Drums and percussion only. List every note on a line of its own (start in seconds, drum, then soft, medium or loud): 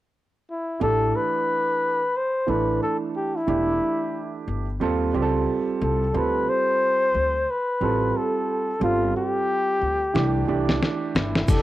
10.16 snare medium
10.69 snare medium
10.83 snare medium
11.16 snare loud
11.35 snare medium
11.48 kick loud
11.48 ride medium
11.48 shaker medium